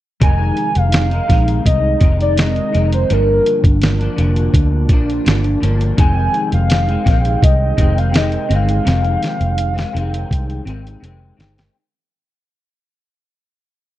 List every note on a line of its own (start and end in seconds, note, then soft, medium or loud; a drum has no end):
0.21 0.50 F1 medium
0.21 1.11 F2 medium
0.21 1.11 C3 medium
0.21 1.12 D#3 medium
0.21 1.11 G#3 medium
0.21 1.08 D#4 medium
0.21 0.78 G#5 loud
0.21 kick medium
0.21 closed hi-hat medium
0.57 closed hi-hat soft
0.75 1.19 F1 medium
0.75 1.66 F5 loud
0.75 closed hi-hat soft
0.92 snare loud
0.92 closed hi-hat medium
1.09 1.30 G#3 soft
1.09 1.28 D#4 soft
1.09 closed hi-hat soft
1.14 1.29 D#3 soft
1.28 1.58 A#1 medium
1.28 1.99 C3 soft
1.28 2.00 D#3 soft
1.28 2.01 G#3 medium
1.28 2.03 D#4 medium
1.28 kick medium
1.28 snare soft
1.28 closed hi-hat medium
1.48 closed hi-hat medium
1.66 1.95 C2 medium
1.66 2.16 D#5 medium
1.66 kick medium
1.66 closed hi-hat medium
2.00 2.59 F1 medium
2.00 2.35 C3 medium
2.00 2.37 D#3 medium
2.00 2.38 G#3 medium
2.00 2.39 D#4 medium
2.00 kick medium
2.00 closed hi-hat medium
2.21 2.37 D5 medium
2.21 closed hi-hat soft
2.36 2.71 C3 medium
2.36 2.72 D#3 medium
2.36 2.74 G#3 medium
2.36 2.75 D#4 medium
2.36 2.89 D#5 medium
2.36 snare loud
2.36 closed hi-hat medium
2.56 closed hi-hat soft
2.73 3.03 F1 medium
2.73 3.09 C3 soft
2.73 3.09 D#3 medium
2.73 3.10 G#3 medium
2.73 3.11 D#4 medium
2.73 closed hi-hat medium
2.92 3.14 C5 medium
2.92 closed hi-hat medium
3.09 3.39 G1 medium
3.09 4.00 G2 medium
3.09 4.00 D3 medium
3.09 4.02 F3 medium
3.09 4.00 A#3 medium
3.09 3.98 D4 medium
3.09 3.83 A#4 medium
3.09 closed hi-hat medium
3.46 closed hi-hat medium
3.64 4.07 G1 medium
3.64 kick medium
3.64 closed hi-hat soft
3.82 snare loud
3.82 closed hi-hat medium
3.99 4.17 F3 soft
3.99 4.18 A#3 medium
3.99 4.18 D4 medium
3.99 closed hi-hat soft
4.16 4.47 F1 medium
4.16 4.88 D3 medium
4.16 4.90 F3 medium
4.16 4.90 A#3 medium
4.16 4.91 D4 medium
4.16 closed hi-hat medium
4.36 closed hi-hat soft
4.54 4.89 D2 medium
4.54 kick medium
4.54 closed hi-hat medium
4.89 5.18 A#1 medium
4.89 5.24 D3 medium
4.89 5.25 F3 medium
4.89 5.26 A#3 medium
4.89 kick medium
4.89 closed hi-hat medium
4.94 5.28 D4 medium
5.10 closed hi-hat soft
5.25 5.55 G1 medium
5.25 5.59 D3 medium
5.25 5.61 F3 medium
5.25 5.62 A#3 medium
5.25 snare loud
5.25 closed hi-hat medium
5.29 5.63 D4 medium
5.44 closed hi-hat soft
5.60 5.91 G1 medium
5.60 5.97 D3 medium
5.60 5.98 F3 medium
5.60 5.98 A#3 medium
5.60 5.99 D4 medium
5.60 closed hi-hat medium
5.81 closed hi-hat medium
5.97 6.27 F1 medium
5.97 6.87 F2 medium
5.97 6.88 C3 medium
5.97 6.90 D#3 medium
5.97 6.89 G#3 medium
5.97 6.87 C4 medium
5.97 6.49 G#5 loud
5.97 kick loud
5.97 closed hi-hat medium
6.34 closed hi-hat soft
6.52 6.96 F1 medium
6.52 7.45 F5 loud
6.52 closed hi-hat soft
6.70 snare loud
6.70 closed hi-hat medium
6.87 7.05 D#3 soft
6.87 7.06 G#3 soft
6.87 7.06 C4 medium
6.87 closed hi-hat soft
7.05 7.35 A#1 medium
7.05 7.76 C3 medium
7.05 7.78 D#3 medium
7.05 7.79 G#3 medium
7.05 kick medium
7.05 snare soft
7.05 closed hi-hat medium
7.09 7.80 C4 medium
7.25 closed hi-hat medium
7.42 7.71 C2 medium
7.42 8.00 D#5 loud
7.42 kick medium
7.42 closed hi-hat medium
7.77 8.36 F1 medium
7.77 8.11 C3 medium
7.77 8.13 D#3 medium
7.77 8.14 G#3 medium
7.77 8.15 C4 medium
7.77 kick medium
7.77 closed hi-hat medium
7.98 8.18 F5 loud
7.98 closed hi-hat soft
8.12 8.48 C3 medium
8.12 8.49 D#3 medium
8.12 8.50 G#3 medium
8.12 snare loud
8.12 closed hi-hat medium
8.16 8.51 C4 medium
8.16 8.51 D#5 medium
8.32 closed hi-hat soft
8.49 8.79 G1 medium
8.49 8.84 C3 medium
8.49 8.85 D#3 medium
8.49 8.86 G#3 medium
8.49 8.86 C4 medium
8.49 closed hi-hat medium
8.55 11.01 F5 loud
8.69 closed hi-hat medium
8.85 9.15 F1 medium
8.85 9.81 F2 medium
8.85 9.93 C3 medium
8.85 9.77 D#3 medium
8.85 9.75 G#3 medium
8.85 9.73 C4 medium
8.85 snare soft
8.85 closed hi-hat medium
9.05 closed hi-hat soft
9.23 snare soft
9.23 closed hi-hat medium
9.41 9.84 F1 medium
9.41 closed hi-hat soft
9.58 closed hi-hat medium
9.74 9.93 D#3 soft
9.74 9.94 G#3 soft
9.74 9.93 C4 medium
9.74 closed hi-hat soft
9.79 snare medium
9.93 10.23 F1 medium
9.93 10.65 C3 medium
9.93 10.67 D#3 medium
9.93 10.68 G#3 medium
9.93 10.69 C4 medium
9.93 closed hi-hat medium
10.14 closed hi-hat medium
10.31 10.59 C2 medium
10.31 kick medium
10.31 closed hi-hat medium
10.50 closed hi-hat soft
10.65 10.95 G#1 medium
10.65 10.99 C3 medium
10.65 11.01 D#3 medium
10.65 11.02 G#3 medium
10.65 11.04 C4 medium
10.65 closed hi-hat medium
10.87 closed hi-hat soft
11.00 11.31 F1 medium
11.00 11.35 C3 medium
11.00 11.36 D#3 medium
11.00 11.38 G#3 medium
11.00 closed hi-hat medium
11.05 11.39 C4 medium
11.37 11.67 G1 medium
11.37 11.74 C3 medium
11.37 11.74 D#3 medium
11.37 11.75 G#3 medium
11.37 11.75 C4 medium
11.37 snare medium
11.37 closed hi-hat medium
11.58 snare medium
11.58 closed hi-hat medium